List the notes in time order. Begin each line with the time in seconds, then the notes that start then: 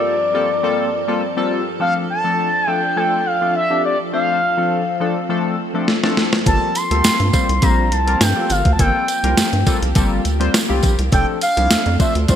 Already playing: G2 F3 G3 A#3 C4 F4 A4 A#4 D5
0.34 G3 A#3 C4 F4 A4
0.63 G3 A#3 C4 F4 A4
1.08 G3 A#3 C4 F4 A4
1.37 G3 A#3 C4 F4 A4
1.80 F3 A3 C4 D4 A4 F5
2.10 A5
2.24 F3 A3 C4 D4 A4
2.67 F3 A3 C4 D4 A4 G5
2.96 F3 A3 C4 D4 A4 G5
3.26 F5
3.41 F3 A3 C4 D4 F4
3.55 E5
3.70 F3 A3 C4 D4 G4
3.85 D5
4.13 F3 A3 C4 D4 C5 F5
4.57 F3 A3 C4 D4 A4
5.00 F3 A3 C4 D4 A4
5.29 F3 A3 C4 D4 A4
5.74 F3 A3 C4 D4 A4
5.88 snare
6.03 F3 A3 C4 D4 A4, snare
6.17 snare
6.33 snare
6.46 G1 G3 A#3 C4 F4 A4 A5, kick, closed hi-hat, tambourine
6.75 C6, closed hi-hat, tambourine
6.91 D2 G3 A#3 C4 F4 A4, closed hi-hat
7.04 G2, snare, closed hi-hat, tambourine
7.20 G2, closed hi-hat
7.33 G3 A#3 C4 F4 C5, kick, closed hi-hat, tambourine
7.49 C2, closed hi-hat
7.62 A#1 G3 A#3 C4 F4 C5 A#5, kick, closed hi-hat, tambourine
7.92 C2 A5, closed hi-hat
8.07 G3 A#3 C4 F4 A#4, closed hi-hat
8.21 G2 G5, snare, closed hi-hat, tambourine
8.36 G3 A#3 C4 F4 A4
8.50 G1 F5, closed hi-hat, tambourine
8.65 D2, kick, closed hi-hat
8.73 A5
8.79 G1 G3 A#3 C4 F4 G4 A4 G5, kick, closed hi-hat, tambourine
9.08 closed hi-hat, tambourine
9.24 C2 G3 A#3 C4 F4 A#4, closed hi-hat
9.37 G2, snare, closed hi-hat, tambourine
9.53 G2, closed hi-hat
9.66 G3 A#3 C4 F4 A4, kick, closed hi-hat, tambourine
9.82 C2, closed hi-hat
9.95 G1 G3 A#3 C4 F4 A4, kick, closed hi-hat, tambourine
10.25 D2, closed hi-hat, tambourine
10.40 G3 A#3 C4 F4 C5, closed hi-hat
10.54 snare, closed hi-hat, tambourine
10.69 C2 G3 A#3 C4 F4 G4
10.83 A#1, kick, closed hi-hat, tambourine
10.99 C2, closed hi-hat
11.12 F1 F3 A3 C4 D4 A4 G5, kick, closed hi-hat, tambourine
11.41 F5, closed hi-hat, tambourine
11.57 C2 F3 A3 C4 D4 E4, closed hi-hat
11.71 F2, snare, closed hi-hat, tambourine
11.86 F2, closed hi-hat
11.99 F3 A3 C4 D4 C5 E5, kick, closed hi-hat, tambourine
12.15 D2, closed hi-hat
12.28 C2 F3 A3 C4 D4 F4 C5, kick, closed hi-hat, tambourine